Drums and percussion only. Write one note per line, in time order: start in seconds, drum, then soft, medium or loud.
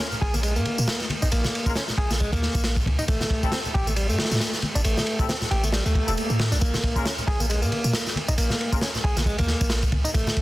0.00 ride medium
0.12 tambourine soft
0.12 low conga medium
0.22 kick medium
0.22 ride medium
0.34 tambourine medium
0.34 high conga medium
0.43 ride medium
0.43 tambourine soft
0.56 tambourine soft
0.65 ride medium
0.65 high conga medium
0.78 tambourine medium
0.88 snare loud
0.88 ride medium
0.88 tambourine soft
1.00 snare soft
1.00 tambourine soft
1.10 ride medium
1.10 high conga medium
1.22 tambourine medium
1.22 low conga medium
1.32 ride medium
1.32 tambourine soft
1.44 snare soft
1.44 tambourine soft
1.44 high conga medium
1.44 low conga medium
1.55 ride medium
1.66 kick medium
1.66 tambourine medium
1.76 snare loud
1.76 ride medium
1.76 tambourine soft
1.76 high conga medium
1.88 snare soft
1.88 tambourine soft
1.88 low conga medium
1.98 kick medium
1.98 ride medium
2.11 snare soft
2.11 tambourine medium
2.11 high conga medium
2.20 kick medium
2.20 ride soft
2.20 tambourine soft
2.33 kick medium
2.33 ride medium
2.33 tambourine soft
2.42 snare soft
2.42 high conga medium
2.55 kick medium
2.55 ride medium
2.55 tambourine medium
2.64 snare loud
2.64 ride medium
2.64 tambourine soft
2.76 kick medium
2.76 tambourine soft
2.86 kick medium
2.86 ride medium
2.86 high conga medium
2.99 tambourine medium
2.99 low conga medium
3.08 kick loud
3.08 ride medium
3.08 tambourine soft
3.21 snare soft
3.21 tambourine soft
3.21 high conga medium
3.21 low conga medium
3.30 kick medium
3.30 ride medium
3.43 kick loud
3.43 tambourine medium
3.52 snare loud
3.52 ride medium
3.52 tambourine soft
3.52 high conga medium
3.65 tambourine soft
3.65 low conga medium
3.75 kick medium
3.75 ride medium
3.87 tambourine medium
3.87 high conga medium
3.96 ride medium
3.96 tambourine soft
4.09 tambourine soft
4.19 snare medium
4.19 ride medium
4.19 high conga medium
4.25 snare medium
4.25 ride medium
4.31 snare medium
4.31 ride medium
4.31 tambourine medium
4.35 snare medium
4.35 ride medium
4.40 snare loud
4.40 ride medium
4.40 tambourine soft
4.53 snare soft
4.53 tambourine soft
4.62 ride medium
4.62 high conga medium
4.75 tambourine medium
4.75 low conga medium
4.84 ride medium
4.84 tambourine medium
4.97 snare soft
4.97 tambourine soft
4.97 high conga medium
4.97 low conga medium
5.07 ride medium
5.19 kick medium
5.19 tambourine medium
5.29 snare loud
5.29 ride medium
5.29 tambourine medium
5.29 high conga medium
5.41 snare soft
5.41 tambourine soft
5.41 low conga medium
5.51 ride medium
5.64 tambourine medium
5.64 high conga medium
5.73 snare loud
5.73 ride medium
5.73 tambourine soft
5.86 tambourine soft
5.95 kick medium
5.95 ride medium
5.95 high conga medium
6.08 tambourine medium
6.17 ride medium
6.17 tambourine soft
6.30 tambourine soft
6.39 snare loud
6.39 ride medium
6.39 high conga medium
6.52 snare soft
6.52 tambourine medium
6.52 low conga medium
6.61 kick loud
6.61 ride medium
6.61 tambourine medium
6.74 snare soft
6.74 tambourine soft
6.74 high conga loud
6.74 low conga medium
6.84 kick medium
6.84 ride medium
6.96 kick medium
6.96 tambourine medium
7.05 snare loud
7.05 ride medium
7.05 tambourine medium
7.05 high conga medium
7.18 tambourine soft
7.18 low conga medium
7.28 kick medium
7.28 ride medium
7.40 tambourine medium
7.40 high conga medium
7.50 ride medium
7.50 tambourine soft
7.62 tambourine soft
7.72 ride medium
7.72 high conga medium
7.84 tambourine medium
7.93 snare loud
7.93 ride medium
7.93 tambourine medium
8.06 snare soft
8.06 tambourine soft
8.16 ride medium
8.16 high conga medium
8.28 tambourine medium
8.28 low conga medium
8.38 ride medium
8.38 tambourine medium
8.50 snare soft
8.50 tambourine soft
8.50 high conga medium
8.50 low conga medium
8.61 ride medium
8.72 kick medium
8.72 tambourine medium
8.81 snare loud
8.81 ride medium
8.81 tambourine medium
8.81 high conga medium
8.95 snare soft
8.95 tambourine soft
8.95 low conga medium
9.04 kick medium
9.04 ride medium
9.17 snare soft
9.17 tambourine medium
9.17 high conga medium
9.26 kick medium
9.26 ride medium
9.26 tambourine soft
9.38 kick medium
9.38 ride medium
9.38 tambourine soft
9.47 snare soft
9.47 high conga medium
9.61 kick medium
9.61 ride medium
9.61 tambourine medium
9.70 snare loud
9.70 ride medium
9.70 tambourine medium
9.83 kick medium
9.83 tambourine soft
9.92 kick medium
9.92 ride medium
9.92 high conga medium
10.05 tambourine medium
10.05 low conga medium
10.14 kick loud
10.14 ride medium
10.14 tambourine medium
10.27 snare medium
10.27 tambourine soft
10.27 high conga medium
10.27 low conga medium
10.37 kick medium
10.37 ride medium